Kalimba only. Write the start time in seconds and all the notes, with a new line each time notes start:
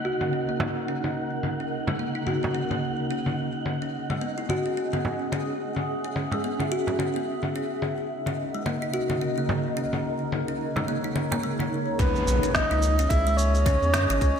0.05 F#4
0.21 C#4
0.33 C#4
0.49 A#3
0.88 C#4
1.60 C#4
1.88 G#3
1.99 A#3
2.15 D#4
2.27 F#4
2.43 C#4
2.55 C#4
2.71 A#3
3.11 C#4
3.82 C#4
4.10 G#3
4.21 B3
4.38 E4
4.50 F#4
4.66 C#4
4.77 C#4
4.93 B3
5.33 C#4
6.04 C#4
6.32 G#3
6.44 B3
6.60 E4
6.72 F#4
6.88 C#4
7.00 C#4
7.16 B3
7.56 C#4
8.27 C#4
8.54 G#3
8.66 A#3
8.82 D#4
8.94 F#4
9.10 C#4
9.21 C#4
9.38 A#3
9.77 C#4
10.48 C#4
10.77 G#3
10.88 A#3
11.04 D#4
11.16 C#4
11.32 A#3
11.43 G#3
11.60 D#4
12.00 C#4
12.43 C#4
12.71 D#4
12.99 C#4
13.11 G#4
13.27 G#3
13.66 C#4
13.94 C#4
14.10 C#4
14.22 C#4